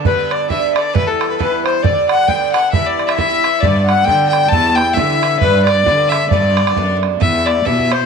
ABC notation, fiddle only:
X:1
M:2/4
L:1/16
Q:"Swing" 1/4=134
K:G
V:1 name="Fiddle"
B2 d2 e2 d2 | B A2 B B2 c2 | d2 f2 g2 f2 | e d2 e e4 |
d2 f2 g2 g2 | a2 g2 e4 | B2 d4 e2 | d6 z2 |
[K:Em] e2 d2 e2 c2 |]